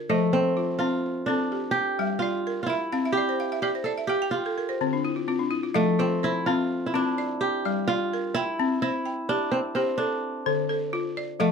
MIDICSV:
0, 0, Header, 1, 3, 480
1, 0, Start_track
1, 0, Key_signature, -1, "major"
1, 0, Tempo, 470958
1, 93, Time_signature, 12, 3, 24, 8
1, 11739, End_track
2, 0, Start_track
2, 0, Title_t, "Balafon"
2, 0, Program_c, 0, 12
2, 0, Note_on_c, 0, 70, 71
2, 99, Note_on_c, 0, 53, 80
2, 100, Note_on_c, 0, 72, 71
2, 338, Note_off_c, 0, 70, 0
2, 578, Note_on_c, 0, 65, 62
2, 579, Note_off_c, 0, 53, 0
2, 818, Note_on_c, 0, 60, 77
2, 821, Note_off_c, 0, 72, 0
2, 1291, Note_off_c, 0, 60, 0
2, 1301, Note_off_c, 0, 65, 0
2, 1304, Note_on_c, 0, 60, 76
2, 1306, Note_on_c, 0, 69, 58
2, 1543, Note_off_c, 0, 60, 0
2, 1550, Note_on_c, 0, 67, 61
2, 1785, Note_off_c, 0, 69, 0
2, 2029, Note_on_c, 0, 55, 74
2, 2029, Note_on_c, 0, 76, 63
2, 2265, Note_on_c, 0, 74, 73
2, 2268, Note_off_c, 0, 67, 0
2, 2507, Note_off_c, 0, 55, 0
2, 2516, Note_on_c, 0, 70, 68
2, 2737, Note_off_c, 0, 76, 0
2, 2750, Note_on_c, 0, 76, 69
2, 2981, Note_on_c, 0, 77, 68
2, 2983, Note_on_c, 0, 60, 81
2, 2987, Note_off_c, 0, 74, 0
2, 2992, Note_off_c, 0, 70, 0
2, 3101, Note_off_c, 0, 76, 0
2, 3113, Note_on_c, 0, 76, 62
2, 3207, Note_off_c, 0, 77, 0
2, 3236, Note_on_c, 0, 74, 67
2, 3334, Note_off_c, 0, 76, 0
2, 3352, Note_on_c, 0, 72, 66
2, 3456, Note_off_c, 0, 74, 0
2, 3465, Note_on_c, 0, 77, 67
2, 3466, Note_off_c, 0, 60, 0
2, 3573, Note_off_c, 0, 72, 0
2, 3587, Note_on_c, 0, 76, 73
2, 3690, Note_off_c, 0, 77, 0
2, 3697, Note_on_c, 0, 74, 63
2, 3699, Note_on_c, 0, 67, 78
2, 3811, Note_off_c, 0, 76, 0
2, 3822, Note_on_c, 0, 72, 59
2, 3921, Note_off_c, 0, 74, 0
2, 3933, Note_on_c, 0, 74, 71
2, 4049, Note_off_c, 0, 72, 0
2, 4052, Note_on_c, 0, 76, 66
2, 4161, Note_off_c, 0, 67, 0
2, 4164, Note_off_c, 0, 74, 0
2, 4173, Note_on_c, 0, 67, 74
2, 4173, Note_on_c, 0, 77, 60
2, 4283, Note_off_c, 0, 76, 0
2, 4300, Note_on_c, 0, 79, 68
2, 4404, Note_off_c, 0, 77, 0
2, 4414, Note_off_c, 0, 67, 0
2, 4426, Note_on_c, 0, 67, 65
2, 4527, Note_off_c, 0, 79, 0
2, 4544, Note_on_c, 0, 69, 62
2, 4651, Note_off_c, 0, 67, 0
2, 4664, Note_on_c, 0, 70, 59
2, 4770, Note_off_c, 0, 69, 0
2, 4779, Note_on_c, 0, 72, 67
2, 4890, Note_off_c, 0, 70, 0
2, 4901, Note_on_c, 0, 50, 75
2, 4903, Note_on_c, 0, 60, 68
2, 5007, Note_off_c, 0, 72, 0
2, 5024, Note_on_c, 0, 62, 59
2, 5129, Note_off_c, 0, 60, 0
2, 5143, Note_on_c, 0, 64, 67
2, 5250, Note_off_c, 0, 62, 0
2, 5260, Note_on_c, 0, 65, 58
2, 5369, Note_off_c, 0, 64, 0
2, 5369, Note_off_c, 0, 65, 0
2, 5380, Note_on_c, 0, 60, 63
2, 5381, Note_on_c, 0, 65, 67
2, 5386, Note_off_c, 0, 50, 0
2, 5494, Note_on_c, 0, 62, 58
2, 5608, Note_off_c, 0, 60, 0
2, 5612, Note_on_c, 0, 64, 71
2, 5725, Note_off_c, 0, 62, 0
2, 5728, Note_off_c, 0, 65, 0
2, 5740, Note_on_c, 0, 65, 54
2, 5843, Note_off_c, 0, 64, 0
2, 5855, Note_on_c, 0, 53, 88
2, 5855, Note_on_c, 0, 77, 74
2, 5968, Note_off_c, 0, 65, 0
2, 6107, Note_on_c, 0, 65, 63
2, 6342, Note_off_c, 0, 53, 0
2, 6352, Note_on_c, 0, 72, 64
2, 6582, Note_off_c, 0, 77, 0
2, 6597, Note_on_c, 0, 60, 82
2, 6827, Note_off_c, 0, 65, 0
2, 7060, Note_off_c, 0, 60, 0
2, 7070, Note_off_c, 0, 72, 0
2, 7073, Note_on_c, 0, 60, 78
2, 7073, Note_on_c, 0, 65, 65
2, 7310, Note_off_c, 0, 60, 0
2, 7320, Note_on_c, 0, 74, 70
2, 7550, Note_off_c, 0, 65, 0
2, 7788, Note_off_c, 0, 74, 0
2, 7801, Note_on_c, 0, 74, 68
2, 7803, Note_on_c, 0, 55, 76
2, 8034, Note_off_c, 0, 74, 0
2, 8046, Note_on_c, 0, 74, 65
2, 8274, Note_off_c, 0, 55, 0
2, 8291, Note_on_c, 0, 70, 71
2, 8524, Note_on_c, 0, 79, 69
2, 8755, Note_off_c, 0, 74, 0
2, 8757, Note_off_c, 0, 70, 0
2, 8760, Note_on_c, 0, 60, 91
2, 8994, Note_off_c, 0, 79, 0
2, 8994, Note_on_c, 0, 72, 62
2, 9229, Note_on_c, 0, 79, 59
2, 9231, Note_off_c, 0, 60, 0
2, 9473, Note_on_c, 0, 67, 83
2, 9707, Note_off_c, 0, 72, 0
2, 9934, Note_off_c, 0, 67, 0
2, 9945, Note_off_c, 0, 79, 0
2, 9946, Note_on_c, 0, 67, 80
2, 9947, Note_on_c, 0, 72, 66
2, 10178, Note_on_c, 0, 69, 70
2, 10183, Note_off_c, 0, 67, 0
2, 10423, Note_off_c, 0, 72, 0
2, 10651, Note_off_c, 0, 69, 0
2, 10662, Note_on_c, 0, 50, 77
2, 10663, Note_on_c, 0, 69, 69
2, 10887, Note_off_c, 0, 69, 0
2, 10900, Note_on_c, 0, 69, 72
2, 11140, Note_off_c, 0, 50, 0
2, 11140, Note_on_c, 0, 65, 81
2, 11387, Note_on_c, 0, 74, 69
2, 11615, Note_on_c, 0, 53, 93
2, 11617, Note_off_c, 0, 69, 0
2, 11618, Note_off_c, 0, 65, 0
2, 11618, Note_on_c, 0, 77, 75
2, 11739, Note_off_c, 0, 53, 0
2, 11739, Note_off_c, 0, 74, 0
2, 11739, Note_off_c, 0, 77, 0
2, 11739, End_track
3, 0, Start_track
3, 0, Title_t, "Kora"
3, 0, Program_c, 1, 46
3, 0, Note_on_c, 1, 62, 75
3, 96, Note_on_c, 1, 57, 79
3, 336, Note_on_c, 1, 60, 86
3, 361, Note_off_c, 1, 62, 0
3, 801, Note_on_c, 1, 65, 81
3, 1286, Note_on_c, 1, 62, 77
3, 1744, Note_on_c, 1, 67, 90
3, 2132, Note_off_c, 1, 57, 0
3, 2171, Note_off_c, 1, 60, 0
3, 2228, Note_off_c, 1, 65, 0
3, 2232, Note_on_c, 1, 65, 86
3, 2674, Note_off_c, 1, 65, 0
3, 2678, Note_on_c, 1, 65, 66
3, 2716, Note_on_c, 1, 64, 88
3, 2777, Note_off_c, 1, 65, 0
3, 2997, Note_off_c, 1, 62, 0
3, 3180, Note_off_c, 1, 67, 0
3, 3184, Note_on_c, 1, 67, 91
3, 3686, Note_off_c, 1, 67, 0
3, 3690, Note_on_c, 1, 67, 78
3, 3757, Note_off_c, 1, 67, 0
3, 3913, Note_on_c, 1, 69, 74
3, 3983, Note_off_c, 1, 69, 0
3, 4151, Note_on_c, 1, 67, 81
3, 4313, Note_off_c, 1, 64, 0
3, 4393, Note_on_c, 1, 65, 74
3, 5590, Note_off_c, 1, 67, 0
3, 5865, Note_on_c, 1, 57, 89
3, 5935, Note_off_c, 1, 65, 0
3, 6110, Note_on_c, 1, 60, 89
3, 6360, Note_on_c, 1, 64, 92
3, 6586, Note_on_c, 1, 65, 89
3, 6647, Note_off_c, 1, 64, 0
3, 6996, Note_on_c, 1, 64, 70
3, 7057, Note_off_c, 1, 65, 0
3, 7085, Note_on_c, 1, 62, 84
3, 7549, Note_on_c, 1, 67, 95
3, 7900, Note_off_c, 1, 57, 0
3, 7944, Note_off_c, 1, 60, 0
3, 8026, Note_on_c, 1, 65, 106
3, 8088, Note_off_c, 1, 64, 0
3, 8505, Note_on_c, 1, 64, 99
3, 8566, Note_off_c, 1, 65, 0
3, 8797, Note_off_c, 1, 62, 0
3, 8986, Note_off_c, 1, 64, 0
3, 8988, Note_off_c, 1, 67, 0
3, 8990, Note_on_c, 1, 64, 87
3, 9468, Note_on_c, 1, 62, 87
3, 9698, Note_on_c, 1, 60, 78
3, 9763, Note_off_c, 1, 60, 0
3, 9936, Note_on_c, 1, 60, 80
3, 10163, Note_off_c, 1, 62, 0
3, 10167, Note_on_c, 1, 62, 82
3, 10587, Note_off_c, 1, 64, 0
3, 11621, Note_on_c, 1, 57, 84
3, 11685, Note_off_c, 1, 57, 0
3, 11739, Note_off_c, 1, 60, 0
3, 11739, Note_off_c, 1, 62, 0
3, 11739, End_track
0, 0, End_of_file